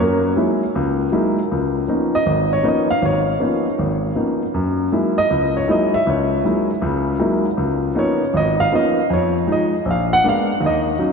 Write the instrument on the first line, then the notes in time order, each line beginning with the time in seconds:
grand piano
0.00 F#2 A#3 A#4
0.36 F#3 G#3 A#3 D#4 E4
0.76 C#2
1.12 F#3 G#3 A#3 D#4 E4
1.52 C#2
1.88 F3 A#3 B3 C#4 D#4
2.15 D#5
2.26 G#1
2.53 C#5
2.63 F3 A#3 B3 C#4 D#4
2.68 D#5
2.90 F5
3.02 G#1 C#5
3.40 F3 A#3 B3 C#4 D#4
3.79 G#1
4.15 F3 A#3 B3 C#4 D#4
4.54 F#2
4.92 F#3 G#3 A#3 D#4 E4
5.18 D#5
5.30 C#2
5.57 C#5
5.68 F#3 G#3 A#3 D#4 E4 D#5
5.94 E5
6.07 C#2 C#5
6.45 F#3 G#3 A#3 D#4 E4
6.82 C#2 C#3
7.19 F#3 G#3 A#3 D#4 E4
7.57 C#2
7.95 F3 A#3 B3 C#4 D#4 C#5
8.34 G#1 D#5
8.60 F5
8.72 F3 A#3 B3 C#4 D#4 D#5
9.10 F2 C#5
9.47 F3 G#3 D#4
9.52 D#5
9.85 A#1
9.91 F5
10.13 F#5
10.24 G#3 A#3 B3 D4
10.29 F5
10.60 D#2 D#3
10.66 D#5
10.99 F#3 C#4 D#4